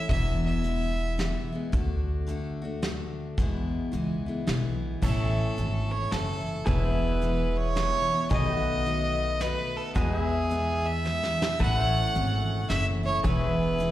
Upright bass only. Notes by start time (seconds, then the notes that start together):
0.09 E1
1.73 D2
3.38 E2
3.93 C#2
4.48 B1
5.02 A1
5.58 G#1
6.12 F#1
6.66 E1
8.31 B1
9.96 E2
11.60 A1
12.16 G#1
12.70 F#1
13.25 E1